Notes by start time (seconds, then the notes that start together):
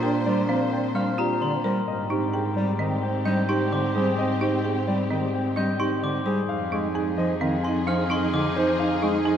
Already playing: A#2 D4 C5
0.03 D4 A#4 G5
0.26 G3 D4 D5
0.49 F3 C4 D4 F5
0.72 D4 G5
0.94 G3 D4 F5 F6
1.18 D4 F4 G4 A#5
1.41 D3 D4 D5 C6
1.64 G3 A#4 C5
1.87 G#2 C4 G4 D#5
2.10 C4 D#4 G4
2.34 C4 G#4 G5
2.56 G3 C4 D5
2.79 D#3 C4 D#5
3.03 C4 G5
3.25 G3 C4 D4 D#5 G6
3.49 C4 D#4 G4 C6
3.72 D3 C4 D5 D6
3.95 G3 C4 G#4 C5
4.18 C4 D#5
4.41 C4 D#4 G4
4.64 C4 G#4 G5
4.88 G3 C4 D5
5.11 D#3 C4 D#5
5.34 C4 G5
5.56 G3 C4 D4 D#5 G6
5.80 C4 D#4 G4 C6
6.03 D3 C4 D5 D6
6.25 G3 G#4 C5
6.49 F2 D#4 G#4 F5
6.72 G#3 D#4 G#4
6.95 D#4 G#4 G#5
7.18 F3 D#4 D#5
7.41 D#3 C4 D#4 F5
7.63 D#4 G#5 C6
7.87 F3 D4 D#4 F5 F6
8.10 D#4 G#4 C6
8.33 D3 D#4 D#5 D6
8.56 F3 D#4 C5
8.80 D#4 F5
9.02 G#3 D#4 G#4
9.25 D#4 G#4 G#5